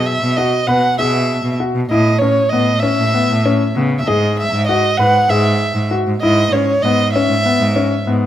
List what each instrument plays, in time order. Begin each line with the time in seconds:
Already playing: cello B2, grand piano G#4
0.06 violin E5
0.23 cello B2
0.37 grand piano F#4, violin D#5
0.67 cello B2, grand piano B4, violin F#5
0.98 cello B2, grand piano G#4, violin E5
1.43 cello B2
1.60 grand piano F#4
1.75 cello B2
1.90 cello A2, grand piano E4, violin D#5
2.19 cello A2, grand piano C#4, violin C#5
2.50 cello A2, grand piano B3, violin D#5
2.80 grand piano C#4, violin E5
3.00 cello A2
3.14 grand piano B3
3.29 cello A2
3.46 grand piano C#4
3.76 cello C#3, grand piano B3
3.98 violin E5
4.07 cello G#2, grand piano G#4, violin D#5
4.40 violin E5
4.52 cello G#2
4.67 grand piano F#4, violin D#5
4.98 cello G#2, grand piano B4, violin F#5
5.30 cello G#2, grand piano G#4, violin E5
5.76 cello G#2
5.91 grand piano F#4
6.07 cello G#2
6.21 cello G#2, grand piano E4, violin D#5
6.51 cello G#2, grand piano C#4, violin C#5
6.82 cello G#2, grand piano B3, violin D#5
7.13 grand piano C#4, violin E5
7.29 cello G#2
7.46 grand piano B3
7.60 cello G#2
7.76 grand piano C#4
8.06 cello G#2, grand piano B3